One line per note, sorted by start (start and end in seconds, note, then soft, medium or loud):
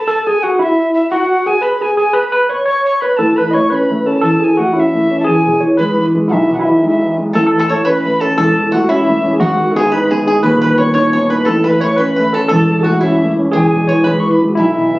0.08 0.25 A4 loud
0.08 0.28 A5 medium
0.27 0.42 G#4 medium
0.27 0.44 G#5 medium
0.43 0.60 F#4 medium
0.43 0.59 F#5 medium
0.59 1.13 E4 medium
0.59 0.94 E5 medium
0.59 0.63 F#5 medium
0.94 1.10 E5 medium
1.10 1.48 F#4 loud
1.10 1.48 F#5 medium
1.46 1.63 G#4 medium
1.46 1.64 G#5 medium
1.62 1.82 B4 medium
1.62 1.83 B5 medium
1.81 1.96 G#4 medium
1.81 1.97 G#5 medium
1.97 2.15 G#4 medium
1.97 2.16 G#5 medium
2.13 2.31 B4 loud
2.13 2.34 B5 medium
2.32 2.50 B4 loud
2.32 2.51 B5 medium
2.49 2.64 C#5 medium
2.49 2.66 C#6 medium
2.66 3.03 C#5 medium
2.66 2.84 C#6 medium
2.85 3.02 C#6 medium
3.01 3.19 B4 medium
3.01 3.18 B5 medium
3.17 4.19 A2 medium
3.17 3.38 A4 medium
3.17 3.38 A5 medium
3.36 3.54 E3 soft
3.36 3.50 B4 loud
3.36 3.55 B5 medium
3.51 3.71 C#5 medium
3.51 3.54 D#5 medium
3.51 3.71 C#6 medium
3.55 3.70 A3 medium
3.70 3.89 C#4 medium
3.70 4.07 B4 medium
3.70 3.75 C#6 medium
3.74 4.08 B5 medium
3.90 4.06 A3 medium
4.06 4.22 C#4 medium
4.06 4.20 A4 medium
4.06 4.22 A5 medium
4.21 5.23 E2 medium
4.21 4.42 A4 loud
4.21 4.45 A5 medium
4.40 4.57 E3 medium
4.40 4.58 G#4 medium
4.40 4.61 G#5 medium
4.57 4.74 A3 medium
4.57 4.74 F#4 medium
4.57 4.76 F#5 medium
4.73 4.93 C#4 medium
4.73 5.22 E4 medium
4.73 4.80 F#5 medium
4.79 5.19 E5 medium
4.94 5.09 A3 medium
5.11 5.26 C#4 medium
5.20 5.28 A5 medium
5.24 6.27 E2 medium
5.24 5.62 G#4 loud
5.24 5.62 G#5 medium
5.46 5.62 B2 soft
5.60 5.78 E3 medium
5.60 5.78 C#5 medium
5.77 5.97 G#3 medium
5.77 6.11 B4 medium
5.77 6.06 B5 medium
5.98 6.13 E3 medium
6.15 6.30 G#3 medium
6.28 7.31 B1 medium
6.28 6.53 E4 medium
6.28 6.33 F#5 medium
6.32 6.51 E5 medium
6.50 6.65 B2 soft
6.54 6.60 F#4 medium
6.54 6.62 F#5 soft
6.59 6.81 E4 medium
6.59 6.88 E5 medium
6.66 6.81 E3 medium
6.83 7.01 G#3 medium
6.83 6.88 D#4 medium
6.88 7.15 E4 medium
6.88 7.16 E5 medium
7.02 7.17 E3 medium
7.18 7.33 G#3 medium
7.33 8.33 A1 medium
7.33 8.35 A2 medium
7.33 7.45 A4 medium
7.33 7.45 A4 loud
7.33 7.46 A5 medium
7.47 7.58 A4 medium
7.54 7.69 E3 soft
7.58 7.69 A4 medium
7.58 7.70 A4 loud
7.58 7.87 A5 medium
7.58 7.62 B5 medium
7.69 7.85 A3 medium
7.69 7.84 C#5 medium
7.69 7.85 C#5 loud
7.85 8.04 C#4 medium
7.85 8.18 B4 medium
7.85 8.22 B4 medium
7.85 7.90 C#6 medium
7.89 8.22 B5 medium
8.05 8.21 A3 soft
8.20 8.37 C#4 medium
8.20 8.36 A4 medium
8.20 8.36 A5 medium
8.36 9.37 E1 medium
8.36 9.38 E2 medium
8.36 8.70 A4 loud
8.36 8.71 A4 medium
8.36 8.70 A5 medium
8.57 8.72 E3 soft
8.72 8.88 A3 medium
8.72 8.87 F#4 medium
8.72 8.90 F#4 loud
8.72 8.91 F#5 medium
8.89 9.08 C#4 medium
8.89 9.31 E4 medium
8.89 9.34 E5 medium
9.08 9.24 A3 medium
9.24 9.40 C#4 medium
9.33 9.40 G#4 medium
9.40 10.40 G#1 medium
9.40 10.41 G#2 medium
9.40 9.73 F#4 loud
9.40 9.74 F#4 medium
9.40 9.73 F#5 medium
9.60 9.76 D#3 soft
9.71 9.76 A4 medium
9.76 9.92 B3 medium
9.76 9.91 G#4 medium
9.76 9.91 G#4 loud
9.76 9.94 G#5 medium
9.92 10.11 D#4 medium
9.92 10.10 B4 medium
9.92 10.12 B4 medium
9.92 10.13 B5 medium
10.11 10.27 B3 medium
10.11 10.26 G#4 medium
10.11 10.26 G#5 medium
10.27 10.43 D#4 medium
10.27 10.44 G#4 medium
10.27 10.43 G#4 medium
10.27 10.42 G#5 medium
10.43 11.43 D#1 medium
10.43 11.44 D#2 medium
10.43 10.61 B4 loud
10.43 10.60 B4 medium
10.43 10.62 B5 medium
10.62 10.79 D#3 medium
10.62 10.77 B4 medium
10.62 10.80 B4 medium
10.62 10.80 B5 medium
10.78 10.95 B3 medium
10.78 10.93 C#5 medium
10.78 10.94 C#5 medium
10.78 10.94 C#6 medium
10.94 11.14 D#4 medium
10.94 11.12 C#5 medium
10.94 11.28 C#5 loud
10.94 11.13 C#6 medium
11.13 11.30 B3 medium
11.13 11.29 C#5 medium
11.13 11.33 C#6 medium
11.30 11.47 D#4 medium
11.30 11.46 B4 medium
11.30 11.50 B5 medium
11.45 12.47 A1 medium
11.45 12.48 A2 medium
11.45 11.64 A4 medium
11.45 11.67 A4 loud
11.45 11.67 A5 medium
11.64 11.82 E3 medium
11.64 11.80 B4 medium
11.64 11.82 B4 medium
11.64 11.85 B5 medium
11.81 11.98 A3 medium
11.81 11.99 C#5 loud
11.81 11.97 C#5 medium
11.81 12.02 C#6 loud
11.96 12.18 C#4 medium
11.96 12.34 B4 medium
11.96 12.15 B4 medium
12.00 12.36 B5 medium
12.16 12.34 A3 medium
12.16 12.32 B4 medium
12.33 12.50 C#4 medium
12.33 12.47 A4 medium
12.33 12.48 A4 medium
12.33 12.50 A5 medium
12.48 13.50 E1 medium
12.48 13.51 E2 medium
12.48 12.82 A4 loud
12.48 12.83 A4 medium
12.48 12.87 A5 medium
12.71 12.86 E3 soft
12.79 13.01 F#4 loud
12.79 12.85 G#4 medium
12.84 13.02 A3 medium
12.84 13.00 F#4 medium
12.84 13.05 F#5 medium
12.99 13.21 C#4 medium
12.99 13.54 E4 medium
12.99 13.50 E4 medium
12.99 13.32 E5 medium
13.23 13.38 A3 medium
13.39 13.54 C#4 medium
13.51 14.53 E1 medium
13.51 14.54 E2 medium
13.51 13.86 G#4 loud
13.51 13.90 G#4 medium
13.51 14.08 G#5 medium
13.74 13.89 B2 soft
13.88 14.06 E3 medium
13.88 14.05 C#5 loud
13.88 14.04 C#5 medium
14.04 14.24 G#3 medium
14.04 14.38 B4 medium
14.04 14.21 B5 medium
14.20 14.33 C#6 medium
14.26 14.41 E3 medium
14.31 14.41 B5 medium
14.42 14.57 G#3 medium
14.48 14.56 F#4 medium
14.55 14.99 B1 medium
14.55 14.99 E4 medium
14.55 14.99 E5 medium
14.78 14.93 B2 soft
14.94 14.99 E3 medium